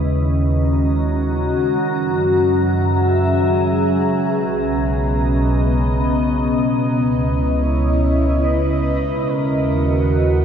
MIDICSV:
0, 0, Header, 1, 5, 480
1, 0, Start_track
1, 0, Tempo, 833333
1, 1043, Time_signature, 3, 2, 24, 8
1, 6019, End_track
2, 0, Start_track
2, 0, Title_t, "Soft synth lead"
2, 0, Program_c, 0, 80
2, 1037, Note_on_c, 0, 70, 102
2, 1507, Note_on_c, 0, 71, 97
2, 1516, Note_off_c, 0, 70, 0
2, 1989, Note_on_c, 0, 73, 103
2, 1997, Note_off_c, 0, 71, 0
2, 2472, Note_on_c, 0, 71, 105
2, 2480, Note_off_c, 0, 73, 0
2, 3437, Note_off_c, 0, 71, 0
2, 3924, Note_on_c, 0, 71, 99
2, 4381, Note_off_c, 0, 71, 0
2, 4394, Note_on_c, 0, 73, 100
2, 4867, Note_on_c, 0, 75, 115
2, 4876, Note_off_c, 0, 73, 0
2, 5344, Note_on_c, 0, 70, 103
2, 5353, Note_off_c, 0, 75, 0
2, 6019, Note_off_c, 0, 70, 0
2, 6019, End_track
3, 0, Start_track
3, 0, Title_t, "Ambient pad"
3, 0, Program_c, 1, 92
3, 0, Note_on_c, 1, 51, 75
3, 0, Note_on_c, 1, 61, 77
3, 0, Note_on_c, 1, 75, 67
3, 191, Note_on_c, 1, 82, 64
3, 259, Note_on_c, 1, 66, 61
3, 1038, Note_on_c, 1, 54, 67
3, 1042, Note_off_c, 1, 75, 0
3, 1043, Note_off_c, 1, 51, 0
3, 1553, Note_on_c, 1, 76, 72
3, 1623, Note_off_c, 1, 66, 0
3, 1686, Note_on_c, 1, 68, 68
3, 2481, Note_off_c, 1, 54, 0
3, 2481, Note_off_c, 1, 76, 0
3, 2487, Note_on_c, 1, 47, 70
3, 2727, Note_on_c, 1, 59, 83
3, 2797, Note_on_c, 1, 75, 66
3, 3057, Note_off_c, 1, 68, 0
3, 3925, Note_off_c, 1, 47, 0
3, 3927, Note_on_c, 1, 49, 77
3, 3932, Note_off_c, 1, 82, 0
3, 4106, Note_on_c, 1, 64, 85
3, 4501, Note_off_c, 1, 59, 0
3, 4582, Note_on_c, 1, 71, 72
3, 5354, Note_on_c, 1, 51, 69
3, 5364, Note_off_c, 1, 64, 0
3, 5365, Note_off_c, 1, 49, 0
3, 5369, Note_off_c, 1, 71, 0
3, 5495, Note_on_c, 1, 66, 80
3, 5968, Note_on_c, 1, 70, 68
3, 6019, Note_off_c, 1, 51, 0
3, 6019, Note_off_c, 1, 61, 0
3, 6019, Note_off_c, 1, 66, 0
3, 6019, Note_off_c, 1, 70, 0
3, 6019, Note_off_c, 1, 75, 0
3, 6019, End_track
4, 0, Start_track
4, 0, Title_t, "Synth drone"
4, 0, Program_c, 2, 95
4, 0, Note_on_c, 2, 49, 64
4, 0, Note_on_c, 2, 56, 63
4, 1037, Note_off_c, 2, 49, 0
4, 1037, Note_off_c, 2, 56, 0
4, 1044, Note_on_c, 2, 49, 63
4, 1044, Note_on_c, 2, 56, 67
4, 6019, Note_off_c, 2, 49, 0
4, 6019, Note_off_c, 2, 56, 0
4, 6019, End_track
5, 0, Start_track
5, 0, Title_t, "Sub bass"
5, 0, Program_c, 3, 38
5, 0, Note_on_c, 3, 39, 81
5, 1020, Note_off_c, 3, 39, 0
5, 1044, Note_on_c, 3, 42, 75
5, 2459, Note_off_c, 3, 42, 0
5, 2482, Note_on_c, 3, 35, 77
5, 3898, Note_off_c, 3, 35, 0
5, 3922, Note_on_c, 3, 37, 77
5, 5338, Note_off_c, 3, 37, 0
5, 5360, Note_on_c, 3, 39, 76
5, 6019, Note_off_c, 3, 39, 0
5, 6019, End_track
0, 0, End_of_file